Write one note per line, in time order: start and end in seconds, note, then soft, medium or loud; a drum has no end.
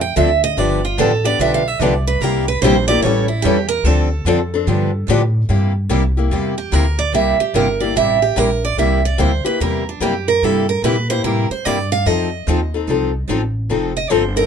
0.00 0.15 F2 medium
0.00 0.16 G5 medium
0.16 0.56 D2 medium
0.16 0.28 D3 medium
0.16 0.29 F3 medium
0.16 0.29 C4 medium
0.16 0.29 D4 medium
0.16 0.29 A4 medium
0.16 0.42 E5 medium
0.44 0.58 D#5 loud
0.57 0.97 G1 medium
0.57 0.79 D3 medium
0.57 0.80 F3 medium
0.57 0.80 B3 medium
0.57 0.80 D4 medium
0.57 0.80 G4 medium
0.57 0.84 D5 medium
0.85 0.99 F4 medium
0.97 1.38 A1 medium
0.97 1.10 D3 medium
0.97 1.10 F3 medium
0.97 1.11 B3 loud
0.97 1.11 D4 loud
0.97 1.11 G4 loud
0.97 1.25 A4 medium
1.24 1.38 B3 medium
1.24 1.39 D4 soft
1.24 1.39 G4 medium
1.24 1.40 D5 loud
1.39 1.79 B1 medium
1.39 1.62 D3 medium
1.39 1.62 F3 medium
1.39 1.62 B3 medium
1.39 1.62 D4 medium
1.39 1.62 G4 medium
1.39 1.54 E5 medium
1.54 1.68 F5 medium
1.68 1.81 E5 medium
1.80 2.20 C2 loud
1.80 1.93 D3 medium
1.80 1.93 F3 medium
1.80 1.93 B3 medium
1.80 1.93 D4 medium
1.80 1.94 G4 medium
1.80 2.07 D5 medium
2.07 2.22 B4 medium
2.21 2.61 C2 medium
2.21 2.44 C3 medium
2.21 2.44 G3 medium
2.21 2.45 A#3 medium
2.21 2.45 E4 medium
2.21 2.45 G4 medium
2.21 2.47 A#4 medium
2.48 2.61 B4 medium
2.61 3.02 A#1 loud
2.61 2.75 C3 loud
2.61 2.75 G3 medium
2.61 2.76 A#3 medium
2.61 2.75 E4 loud
2.61 2.76 G4 loud
2.61 2.87 C5 medium
2.88 3.05 A#3 medium
2.88 3.04 E4 medium
2.88 3.03 G4 medium
2.88 3.02 D5 loud
3.02 3.43 A1 medium
3.02 3.26 E3 medium
3.02 3.27 G3 medium
3.02 3.27 C#4 medium
3.02 3.27 E4 medium
3.02 3.27 A4 medium
3.02 3.28 C#5 medium
3.28 3.44 E4 medium
3.42 3.83 E2 medium
3.42 3.57 E3 medium
3.42 3.57 G3 loud
3.42 3.57 C#4 loud
3.42 3.57 E4 medium
3.42 3.68 G4 medium
3.46 3.57 A4 medium
3.69 3.85 A#4 loud
3.84 4.24 D2 medium
3.84 4.07 D3 medium
3.84 4.07 F3 medium
3.84 4.08 C4 medium
3.84 4.08 D4 medium
3.84 5.08 A4 medium
3.84 4.08 A4 medium
4.25 4.66 F2 medium
4.25 4.38 D3 medium
4.25 4.38 F3 medium
4.25 4.39 C4 loud
4.25 4.39 D4 loud
4.25 4.39 A4 loud
4.54 4.68 C4 medium
4.54 4.68 D4 medium
4.54 4.68 A4 medium
4.67 5.07 G2 medium
4.67 4.90 D3 medium
4.67 4.90 F3 medium
4.67 4.90 B3 medium
4.67 4.90 D4 medium
4.67 4.90 G4 medium
5.09 5.48 A2 medium
5.09 5.21 D3 medium
5.09 5.21 F3 medium
5.09 5.21 B3 loud
5.09 5.21 D4 loud
5.09 5.21 G4 loud
5.49 5.89 G2 medium
5.49 5.71 C3 medium
5.49 5.72 G3 medium
5.49 5.72 A#3 medium
5.49 5.72 E4 medium
5.49 5.72 G4 medium
5.89 6.30 C2 medium
5.89 6.02 C3 medium
5.89 6.02 G3 medium
5.89 6.02 A#3 medium
5.89 6.03 E4 medium
5.89 6.02 G4 loud
6.17 6.31 A#3 soft
6.17 6.31 E4 medium
6.17 6.31 G4 medium
6.31 6.71 E2 medium
6.31 6.54 C3 medium
6.31 6.54 G3 medium
6.31 6.54 A#3 medium
6.31 6.54 E4 medium
6.31 6.54 G4 medium
6.58 6.73 G4 medium
6.72 7.12 D2 medium
6.72 6.84 C3 medium
6.72 6.84 G3 medium
6.72 6.84 A#3 medium
6.72 6.85 E4 medium
6.72 6.85 G4 medium
6.72 6.99 A#4 medium
6.99 7.13 D5 medium
7.12 7.38 C2 medium
7.12 7.36 C3 medium
7.12 7.36 G3 medium
7.12 7.36 A#3 medium
7.12 7.36 E4 medium
7.12 7.36 G4 medium
7.12 7.40 E5 medium
7.39 7.55 G4 medium
7.39 muted upright bass stroke soft
7.54 7.94 G1 medium
7.54 7.66 C3 medium
7.54 7.67 G3 medium
7.54 7.67 A#3 medium
7.54 7.67 E4 medium
7.54 7.67 G4 medium
7.54 7.81 A#4 medium
7.80 7.96 A#3 soft
7.80 7.95 E4 soft
7.80 7.95 G4 medium
7.80 7.95 D5 medium
7.96 8.36 A1 medium
7.96 8.18 C3 medium
7.96 8.18 G3 medium
7.96 8.18 A#3 medium
7.96 8.18 E4 medium
7.96 8.19 G4 medium
7.96 8.22 E5 medium
8.22 8.38 G4 medium
8.36 8.77 A#1 medium
8.36 8.48 C3 medium
8.36 8.49 G3 medium
8.36 8.48 A#3 medium
8.36 8.49 E4 medium
8.36 8.49 G4 medium
8.36 8.63 A#4 medium
8.65 8.78 D5 medium
8.77 9.17 C2 medium
8.77 9.00 C3 medium
8.77 9.00 G3 medium
8.77 9.00 A#3 medium
8.77 9.00 E4 medium
8.77 9.01 G4 medium
8.77 9.04 E5 medium
9.05 9.19 D5 medium
9.18 9.43 D2 medium
9.18 9.30 C3 medium
9.18 9.30 G3 medium
9.18 9.30 A#3 medium
9.18 9.30 E4 medium
9.18 9.31 G4 medium
9.18 9.45 C5 medium
9.45 9.60 A#3 soft
9.45 9.60 E4 medium
9.45 9.59 G4 medium
9.45 9.60 B4 medium
9.45 muted upright bass stroke soft
9.60 10.00 E2 medium
9.60 9.82 C3 medium
9.60 9.82 G3 medium
9.60 9.83 A#3 medium
9.60 9.83 E4 medium
9.60 9.83 G4 medium
9.60 9.86 A#4 medium
9.89 10.02 D4 medium
10.00 10.40 F#2 medium
10.00 10.12 C3 medium
10.00 10.13 G3 medium
10.00 10.13 A#3 medium
10.00 10.13 E4 medium
10.00 10.27 G4 medium
10.00 10.13 G4 medium
10.28 10.44 A#4 medium
10.42 10.82 G2 medium
10.42 10.64 C3 medium
10.42 10.65 G3 medium
10.42 10.65 A#3 medium
10.42 10.65 E4 medium
10.42 10.65 G4 medium
10.42 10.69 A4 medium
10.69 10.83 A#4 medium
10.82 11.22 A#2 medium
10.82 10.95 C3 medium
10.82 10.95 G3 medium
10.82 10.95 A#3 medium
10.82 10.95 E4 medium
10.82 10.96 G4 medium
10.82 11.09 B4 medium
11.10 11.23 A#3 soft
11.10 11.24 E4 soft
11.10 11.24 G4 medium
11.10 11.24 C5 loud
11.24 11.48 A2 medium
11.24 11.46 C3 soft
11.24 11.46 G3 medium
11.24 11.46 A#3 medium
11.24 11.46 E4 medium
11.24 11.47 G4 medium
11.24 11.50 A#4 medium
11.50 11.65 C5 medium
11.50 muted upright bass stroke soft
11.65 12.05 G2 medium
11.65 11.77 C3 medium
11.65 11.77 G3 medium
11.65 11.77 A#3 medium
11.65 11.77 E4 medium
11.65 11.77 G4 medium
11.65 11.91 D5 medium
11.92 12.06 F5 loud
12.06 12.46 F2 medium
12.06 12.28 F3 medium
12.06 12.28 C4 medium
12.06 12.28 D#4 medium
12.06 12.28 A4 medium
12.06 13.29 D#5 medium
12.47 12.87 D#2 medium
12.47 12.59 F3 medium
12.47 12.59 C4 medium
12.47 12.59 D#4 loud
12.47 12.60 A4 medium
12.74 12.89 C4 soft
12.74 12.88 D#4 soft
12.74 12.88 A4 medium
12.87 13.27 C2 medium
12.87 13.10 F3 medium
12.87 13.11 C4 medium
12.87 13.11 D#4 medium
12.87 13.11 A4 medium
13.29 13.69 A1 medium
13.29 13.41 F3 medium
13.29 13.41 C4 medium
13.29 13.41 D#4 medium
13.29 13.41 A4 medium
13.69 14.09 F1 medium
13.69 13.91 F3 medium
13.69 13.92 C4 medium
13.69 13.92 D#4 medium
13.69 13.92 A4 medium
13.97 14.11 D#5 medium
14.10 14.46 G1 medium
14.10 14.22 F3 medium
14.10 14.22 C4 medium
14.10 14.22 D#4 medium
14.10 14.22 A4 medium
14.10 14.36 C5 medium
14.36 14.46 C4 soft
14.36 14.46 D#4 medium
14.36 14.46 A4 medium
14.36 14.46 A#4 medium